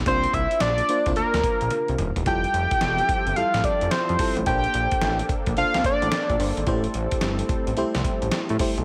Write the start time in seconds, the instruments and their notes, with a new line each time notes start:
0.06 analog synth bass C2, fm electric piano A#3 D4 F4 C5, analog synth lead C5, kick, closed hi-hat
0.24 closed hi-hat
0.33 analog synth bass C2, analog synth lead E5, kick, closed hi-hat
0.51 closed hi-hat
0.60 analog synth bass A#1, analog synth lead D5, snare, closed hi-hat
0.78 closed hi-hat
0.89 fm electric piano A#3 D4 F4 C5, closed hi-hat
1.06 analog synth bass C2, fm electric piano A#3 D4 F4 C5, kick, closed hi-hat
1.16 analog synth bass D2, analog synth lead A#4, closed hi-hat
1.34 analog synth bass D2, snare, closed hi-hat
1.44 kick, closed hi-hat
1.61 analog synth bass A#1, closed hi-hat
1.71 closed hi-hat, high tom
1.88 analog synth bass C2, closed hi-hat
1.98 analog synth bass D#1, closed hi-hat, mid tom
2.16 analog synth bass E1, closed hi-hat, floor tom
2.26 analog synth bass F1, analog synth pad F3 C4 G4 A4 E5, fm electric piano G3 E4 F4 A4, analog synth lead G5, kick, closed hi-hat
2.44 closed hi-hat
2.54 analog synth bass F1, closed hi-hat
2.71 kick, closed hi-hat
2.81 analog synth bass E1, snare, closed hi-hat
2.98 closed hi-hat
3.09 kick, closed hi-hat
3.26 analog synth bass G1, closed hi-hat
3.36 analog synth bass A1, fm electric piano G3 E4 F4 A4, analog synth lead F5, closed hi-hat
3.54 analog synth bass A1, snare, closed hi-hat
3.64 analog synth lead D5, kick, closed hi-hat
3.81 analog synth bass F1, closed hi-hat
3.91 analog synth lead C5, snare, closed hi-hat
4.09 analog synth bass F2, closed hi-hat
4.19 fm electric piano G3 E4 F4 A4, kick, open hi-hat
4.37 analog synth bass A1, closed hi-hat
4.46 analog synth bass A#1, analog synth pad A#3 D4 A4, fm electric piano A#3 D4 A4 C5, analog synth lead G5, kick, closed hi-hat
4.64 closed hi-hat
4.74 analog synth bass A#1, closed hi-hat
4.91 kick, closed hi-hat
5.02 analog synth bass A1, snare, closed hi-hat
5.19 closed hi-hat
5.29 kick, closed hi-hat
5.46 analog synth bass A#1, kick, closed hi-hat
5.57 analog synth bass C2, fm electric piano A#3 D4 A4 C5, analog synth lead F5, closed hi-hat
5.74 analog synth bass C2, snare, closed hi-hat
5.84 analog synth lead D5, kick, closed hi-hat
6.02 analog synth bass A1, closed hi-hat
6.12 snare, closed hi-hat
6.30 analog synth bass A#1, kick, closed hi-hat
6.39 analog synth bass G1, fm electric piano A#3 D4 A4 C5, open hi-hat
6.57 analog synth bass G#1, closed hi-hat
6.67 analog synth bass A1, analog synth pad G3 C4, fm electric piano A3 E4 G4 C5, kick, closed hi-hat
6.84 closed hi-hat
6.94 analog synth bass A1, closed hi-hat
7.11 kick, closed hi-hat
7.21 analog synth bass G1, snare, closed hi-hat
7.39 closed hi-hat
7.49 kick, closed hi-hat
7.67 analog synth bass A1, closed hi-hat
7.77 analog synth bass C2, fm electric piano A3 E4 G4 C5, closed hi-hat
7.95 analog synth bass C2, snare, closed hi-hat
8.04 kick, closed hi-hat
8.22 analog synth bass A1, closed hi-hat
8.31 snare, closed hi-hat
8.49 analog synth bass A2, closed hi-hat
8.59 fm electric piano A3 E4 G4 C5, kick, open hi-hat
8.78 analog synth bass B1, closed hi-hat